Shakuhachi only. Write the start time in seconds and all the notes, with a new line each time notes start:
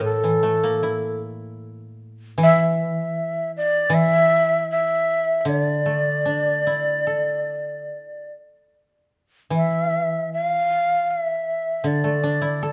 0.04 A4
2.43 E5
3.57 D5
3.94 E5
4.71 E5
5.41 E5
5.48 C#5
5.60 D5
9.56 E5
10.33 F5
11.11 E5
11.87 D5